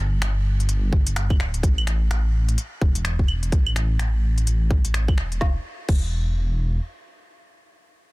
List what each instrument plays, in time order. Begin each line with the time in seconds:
Already playing: detuned saw bass G1
0.22 finger snap, closed hi-hat
0.60 closed hi-hat
0.69 detuned saw bass G1, closed hi-hat
0.93 kick
1.06 detuned saw bass G1, closed hi-hat
1.16 finger snap, closed hi-hat
1.30 kick, claves
1.40 detuned saw bass D1, finger snap
1.54 closed hi-hat
1.63 detuned saw bass A1, kick, closed hi-hat
1.78 claves
1.87 finger snap, closed hi-hat
2.11 finger snap, closed hi-hat
2.49 closed hi-hat
2.58 closed hi-hat
2.81 detuned saw bass E1, kick
2.95 closed hi-hat
3.05 finger snap, closed hi-hat
3.19 kick
3.28 claves
3.43 closed hi-hat
3.52 detuned saw bass A1, kick, closed hi-hat
3.66 claves
3.76 finger snap, closed hi-hat
3.99 finger snap, closed hi-hat
4.38 closed hi-hat
4.47 detuned saw bass A1, closed hi-hat
4.71 kick
4.85 detuned saw bass A1, closed hi-hat
4.94 finger snap, closed hi-hat
5.08 kick, claves
5.18 detuned saw bass E1, finger snap
5.32 closed hi-hat
5.41 detuned saw bass E1, kick, snare
5.89 detuned saw bass E1, kick, crash